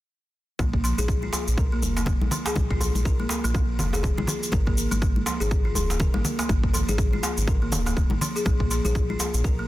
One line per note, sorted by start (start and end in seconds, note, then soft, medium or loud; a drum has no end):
0.59 0.93 A#1 medium
0.59 0.67 A#3 medium
0.59 kick loud
0.59 high conga medium
0.59 low conga medium
0.59 shaker soft
0.73 kick medium
0.84 0.97 F3 medium
0.84 shaker medium
0.98 1.29 A#1 medium
0.98 1.04 G#4 medium
0.98 high conga medium
0.98 shaker soft
1.08 kick loud
1.08 shaker soft
1.22 1.32 F4 medium
1.22 high conga medium
1.33 1.46 F3 medium
1.33 djembe slap medium
1.33 djembe tone medium
1.33 shaker medium
1.48 1.84 A#1 medium
1.48 shaker soft
1.57 1.71 A#4 medium
1.57 kick loud
1.57 djembe bass medium
1.57 shaker soft
1.72 1.81 A#3 medium
1.82 2.16 F1 medium
1.82 high conga medium
1.82 djembe bass medium
1.82 shaker medium
1.97 2.06 A#3 medium
1.97 djembe slap medium
1.97 shaker soft
2.06 2.15 A#3 medium
2.06 kick loud
2.06 low conga loud
2.06 shaker soft
2.21 2.29 A#1 medium
2.21 high conga medium
2.21 djembe tone medium
2.31 2.45 F3 medium
2.31 low conga loud
2.31 shaker medium
2.46 2.52 G#4 medium
2.46 djembe slap medium
2.46 shaker soft
2.56 2.90 A#1 medium
2.56 kick loud
2.56 high conga medium
2.56 low conga medium
2.56 shaker soft
2.71 2.80 F4 medium
2.71 kick medium
2.81 2.94 F3 medium
2.81 djembe bass medium
2.81 shaker medium
2.95 3.26 A#1 medium
2.95 high conga medium
2.95 shaker soft
3.05 3.19 A#4 medium
3.05 kick loud
3.05 shaker soft
3.20 3.29 A#3 medium
3.20 high conga medium
3.29 djembe slap medium
3.29 djembe tone medium
3.29 shaker medium
3.44 3.80 A#1 medium
3.44 3.53 A#3 medium
3.44 shaker medium
3.54 3.62 A#3 medium
3.54 kick loud
3.54 djembe tone medium
3.54 shaker soft
3.79 4.13 F1 medium
3.79 3.92 F3 medium
3.79 djembe tone medium
3.79 low conga medium
3.79 shaker medium
3.93 3.99 G#4 medium
3.93 djembe tone medium
3.93 shaker soft
4.03 kick loud
4.03 djembe bass medium
4.03 shaker soft
4.18 4.26 A#1 medium
4.18 4.27 F4 medium
4.18 high conga medium
4.18 low conga medium
4.27 4.41 F3 medium
4.27 low conga loud
4.27 shaker medium
4.43 shaker soft
4.52 4.87 G#1 loud
4.52 4.66 A#4 medium
4.52 kick loud
4.52 high conga medium
4.52 low conga medium
4.52 shaker soft
4.67 4.76 A#3 medium
4.67 kick medium
4.77 shaker medium
4.91 5.23 G#1 medium
4.91 5.01 A#3 medium
4.91 high conga medium
4.91 shaker medium
5.02 5.10 A#3 medium
5.02 kick loud
5.02 shaker soft
5.16 high conga medium
5.26 5.39 F3 medium
5.26 djembe slap medium
5.26 djembe tone medium
5.26 shaker medium
5.40 5.77 G#1 medium
5.40 5.46 G#4 medium
5.40 shaker medium
5.51 kick loud
5.51 djembe bass medium
5.51 shaker soft
5.65 5.74 F4 medium
5.75 6.09 D#1 loud
5.75 5.88 F3 medium
5.75 high conga medium
5.75 djembe bass medium
5.75 shaker medium
5.90 djembe slap medium
5.90 shaker medium
6.00 6.14 A#4 medium
6.00 kick loud
6.00 low conga loud
6.00 shaker soft
6.14 6.22 G#1 medium
6.14 6.24 A#3 medium
6.14 djembe tone medium
6.14 high conga loud
6.25 low conga loud
6.25 shaker medium
6.39 6.48 A#3 medium
6.39 djembe slap medium
6.39 shaker soft
6.49 6.83 G#1 medium
6.49 6.57 A#3 medium
6.49 kick loud
6.49 high conga medium
6.49 low conga medium
6.49 shaker soft
6.63 kick medium
6.73 6.87 F3 medium
6.73 djembe bass medium
6.73 shaker medium
6.88 7.20 G#1 medium
6.88 6.94 G#4 medium
6.88 high conga medium
6.88 shaker medium
6.98 kick loud
6.98 shaker soft
7.13 7.22 F4 medium
7.13 high conga medium
7.23 7.36 F3 medium
7.23 djembe slap medium
7.23 djembe tone medium
7.23 shaker medium
7.38 7.74 G#1 medium
7.38 shaker medium
7.47 7.61 A#4 medium
7.47 kick loud
7.47 djembe tone medium
7.47 shaker soft
7.62 7.71 A#3 medium
7.72 8.06 D#1 loud
7.72 djembe tone medium
7.72 low conga medium
7.72 shaker medium
7.86 7.96 A#3 medium
7.86 djembe tone medium
7.86 shaker soft
7.97 8.05 A#3 medium
7.97 kick loud
7.97 djembe bass medium
7.97 shaker soft
8.10 8.19 G#1 medium
8.10 high conga medium
8.10 low conga medium
8.21 8.34 F3 medium
8.21 low conga medium
8.21 shaker medium
8.36 8.41 G#4 medium
8.36 shaker soft
8.45 8.80 A#1 loud
8.45 8.54 A#3 medium
8.45 kick loud
8.45 high conga medium
8.45 low conga medium
8.45 shaker soft
8.60 kick medium
8.71 8.84 F3 medium
8.71 shaker medium
8.85 9.16 A#1 medium
8.85 8.91 G#4 medium
8.85 high conga medium
8.85 shaker soft
8.95 kick loud
8.95 shaker soft
9.10 9.19 F4 medium
9.10 high conga medium
9.20 9.33 F3 medium
9.20 djembe slap medium
9.20 djembe tone medium
9.20 shaker medium
9.34 9.68 A#1 medium
9.34 shaker medium
9.44 9.58 A#4 medium
9.44 kick loud
9.44 djembe bass medium
9.44 shaker soft
9.59 9.68 A#3 medium